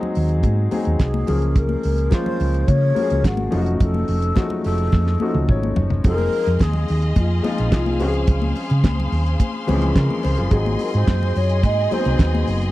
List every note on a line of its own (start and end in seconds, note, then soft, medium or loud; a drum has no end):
0.00 0.71 F#3 medium
0.00 0.71 G#3 medium
0.00 0.72 C4 medium
0.00 0.72 D#4 medium
0.00 0.73 G#4 medium
0.00 low conga medium
0.15 0.44 D#2 medium
0.15 open hi-hat medium
0.15 muted conga soft
0.29 closed hi-hat soft
0.43 0.67 G#2 medium
0.43 kick loud
0.43 closed hi-hat soft
0.43 muted conga soft
0.43 high conga medium
0.71 1.27 F#3 medium
0.71 1.26 G#3 medium
0.71 1.28 C4 medium
0.71 1.28 D#4 medium
0.71 1.27 G#4 medium
0.71 open hi-hat medium
0.71 muted conga soft
0.71 high conga medium
0.85 0.98 D#2 medium
0.85 closed hi-hat soft
0.99 1.58 G#4 medium
0.99 kick loud
0.99 snare loud
0.99 closed hi-hat medium
0.99 muted conga soft
1.14 high conga medium
1.27 1.74 C#2 medium
1.27 1.95 F3 medium
1.27 1.96 G#3 medium
1.27 1.96 A#3 medium
1.27 1.96 C#4 medium
1.27 1.96 G#4 medium
1.27 open hi-hat medium
1.27 muted conga soft
1.27 low conga medium
1.42 closed hi-hat soft
1.56 2.14 A#4 loud
1.56 kick loud
1.56 closed hi-hat medium
1.56 muted conga soft
1.56 low conga medium
1.69 high conga medium
1.83 2.08 C#2 medium
1.83 open hi-hat medium
1.98 closed hi-hat soft
2.10 2.79 F3 medium
2.10 2.79 G#3 medium
2.10 2.80 A#3 medium
2.10 2.80 C#4 medium
2.10 2.80 F4 medium
2.10 2.69 C5 loud
2.10 kick loud
2.10 snare medium
2.10 closed hi-hat medium
2.10 muted conga soft
2.10 high conga medium
2.26 low conga medium
2.40 2.63 C#2 loud
2.40 open hi-hat medium
2.40 muted conga soft
2.54 closed hi-hat soft
2.67 2.91 C#3 loud
2.67 3.28 C#5 loud
2.67 kick loud
2.67 closed hi-hat medium
2.67 muted conga soft
2.67 high conga medium
2.95 3.49 F3 medium
2.95 3.51 G#3 medium
2.95 3.51 A#3 medium
2.95 3.50 C#4 medium
2.95 3.03 F#4 medium
2.95 open hi-hat medium
2.95 high conga medium
3.02 3.55 G#4 medium
3.10 3.22 C#2 medium
3.10 closed hi-hat soft
3.24 3.47 G#1 medium
3.24 3.81 F#4 medium
3.24 kick loud
3.24 snare loud
3.24 closed hi-hat medium
3.24 muted conga soft
3.37 high conga medium
3.50 3.76 F1 medium
3.50 4.19 F3 medium
3.50 4.20 A3 medium
3.50 4.20 C#4 medium
3.50 4.20 D#4 medium
3.50 3.58 F4 medium
3.50 open hi-hat medium
3.50 low conga medium
3.58 4.23 F#4 medium
3.66 closed hi-hat soft
3.80 4.03 F1 loud
3.80 4.61 A4 loud
3.80 kick loud
3.80 closed hi-hat medium
3.80 muted conga soft
3.80 low conga medium
3.94 high conga medium
4.08 4.31 F1 medium
4.08 open hi-hat medium
4.22 closed hi-hat soft
4.35 5.04 F3 medium
4.35 4.42 G#3 medium
4.35 5.04 C#4 medium
4.35 5.04 D#4 medium
4.35 5.04 F#4 medium
4.35 kick loud
4.35 snare loud
4.35 closed hi-hat medium
4.35 muted conga soft
4.35 high conga medium
4.42 5.07 A3 medium
4.50 low conga medium
4.64 4.88 F1 medium
4.64 5.72 A4 medium
4.64 open hi-hat medium
4.64 muted conga soft
4.78 closed hi-hat soft
4.92 5.15 F2 loud
4.92 kick medium
4.92 snare medium
4.92 muted conga soft
4.92 high conga medium
5.07 snare medium
5.20 5.89 F3 medium
5.20 5.89 A3 medium
5.20 5.89 C#4 medium
5.20 5.89 D#4 medium
5.20 5.89 F#4 medium
5.20 muted conga soft
5.20 high conga medium
5.34 5.46 C#2 medium
5.34 high tom medium
5.48 5.72 G#1 medium
5.48 6.01 C#5 medium
5.48 kick loud
5.48 mid tom medium
5.63 high conga medium
5.76 6.00 F#1 medium
5.76 floor tom medium
5.76 muted conga soft
5.76 low conga medium
5.90 floor tom medium
6.04 6.27 F1 loud
6.04 6.95 F3 medium
6.04 6.95 G#3 medium
6.04 6.95 C4 medium
6.04 6.96 D#4 medium
6.04 6.11 F#4 medium
6.04 10.48 G#4 medium
6.04 6.63 A#4 loud
6.04 7.99 D#5 medium
6.04 10.48 F5 medium
6.04 12.71 C6 medium
6.04 kick loud
6.04 closed hi-hat medium
6.04 muted conga soft
6.04 low conga medium
6.12 6.99 G#4 medium
6.18 high conga medium
6.32 open hi-hat medium
6.32 muted conga soft
6.47 6.58 F2 medium
6.47 closed hi-hat soft
6.59 6.83 D#2 medium
6.59 7.17 G#4 loud
6.59 kick loud
6.59 snare medium
6.59 closed hi-hat medium
6.59 muted conga soft
6.59 high conga medium
6.73 low conga medium
6.88 7.12 D#2 medium
6.88 open hi-hat medium
7.02 closed hi-hat soft
7.16 7.39 F2 loud
7.16 7.43 F4 medium
7.16 kick loud
7.16 closed hi-hat medium
7.16 muted conga soft
7.16 high conga medium
7.42 7.98 F3 medium
7.42 7.98 G#3 medium
7.42 7.99 C4 medium
7.42 8.00 D#4 medium
7.42 8.00 F4 medium
7.42 7.71 F4 medium
7.42 open hi-hat medium
7.42 muted conga soft
7.42 high conga medium
7.58 7.72 A#1 medium
7.58 closed hi-hat medium
7.72 8.02 C2 medium
7.72 8.12 F4 medium
7.72 kick loud
7.72 snare loud
7.72 closed hi-hat medium
7.86 high conga medium
7.99 8.24 C#2 medium
7.99 8.90 F3 medium
7.99 8.91 G#3 medium
7.99 8.91 C4 medium
7.99 8.91 C#4 medium
7.99 8.07 F#4 medium
7.99 10.49 C5 medium
7.99 open hi-hat medium
7.99 muted conga soft
8.08 8.95 G#4 medium
8.14 closed hi-hat soft
8.27 8.51 C#2 loud
8.27 kick loud
8.27 closed hi-hat medium
8.27 muted conga soft
8.27 low conga medium
8.42 high conga medium
8.56 open hi-hat medium
8.56 muted conga soft
8.70 8.82 C#3 medium
8.70 closed hi-hat soft
8.84 9.07 C#2 medium
8.84 kick loud
8.84 snare loud
8.84 closed hi-hat medium
8.84 muted conga soft
8.84 high conga medium
9.00 low conga medium
9.12 9.35 D#2 medium
9.12 open hi-hat medium
9.12 muted conga soft
9.26 closed hi-hat soft
9.40 kick medium
9.40 closed hi-hat medium
9.40 muted conga soft
9.40 high conga medium
9.67 9.92 C#2 medium
9.67 9.74 E3 medium
9.67 10.36 G#3 medium
9.67 10.36 C4 medium
9.67 10.36 C#4 medium
9.67 9.96 G#4 loud
9.67 open hi-hat medium
9.67 muted conga soft
9.67 high conga medium
9.73 10.39 F3 medium
9.82 closed hi-hat medium
9.96 10.07 C#3 medium
9.96 10.23 A#4 medium
9.96 kick loud
9.96 snare loud
9.96 closed hi-hat medium
10.10 high conga medium
10.23 10.36 C#2 medium
10.23 10.36 G#4 medium
10.23 10.37 C5 medium
10.23 open hi-hat medium
10.23 muted conga soft
10.37 10.50 F#1 medium
10.37 10.64 F4 medium
10.37 10.51 G#4 medium
10.37 closed hi-hat soft
10.50 10.75 G#1 loud
10.50 11.42 F#3 medium
10.50 11.42 G#3 medium
10.50 11.42 C4 medium
10.50 11.42 D#4 medium
10.50 12.71 G#4 medium
10.50 11.43 G#4 medium
10.50 12.71 D#5 medium
10.50 12.71 G#5 medium
10.50 kick loud
10.50 closed hi-hat medium
10.50 muted conga soft
10.50 low conga medium
10.66 high conga medium
10.79 10.94 A#4 medium
10.79 open hi-hat medium
10.79 muted conga soft
10.94 11.06 G#2 medium
10.94 11.38 C5 medium
10.94 closed hi-hat soft
11.07 11.31 F#2 medium
11.07 kick loud
11.07 snare loud
11.07 closed hi-hat medium
11.07 muted conga soft
11.07 high conga medium
11.23 low conga medium
11.35 11.64 F#2 medium
11.35 11.64 C#5 medium
11.35 open hi-hat medium
11.35 muted conga soft
11.49 closed hi-hat soft
11.63 11.87 G#2 medium
11.63 11.94 D#5 loud
11.63 kick loud
11.63 closed hi-hat medium
11.63 high conga medium
11.91 12.59 F#3 medium
11.91 12.59 G#3 medium
11.91 11.98 B3 medium
11.91 12.60 D#4 medium
11.91 12.60 G#4 medium
11.91 12.48 C5 loud
11.91 open hi-hat medium
11.91 muted conga soft
11.91 high conga medium
11.98 12.63 C4 medium
12.05 12.17 C2 medium
12.05 closed hi-hat medium
12.19 12.43 D#2 medium
12.19 kick loud
12.19 snare loud
12.19 closed hi-hat medium
12.19 muted conga soft
12.35 high conga medium
12.47 12.70 F#1 medium
12.47 open hi-hat medium
12.61 closed hi-hat soft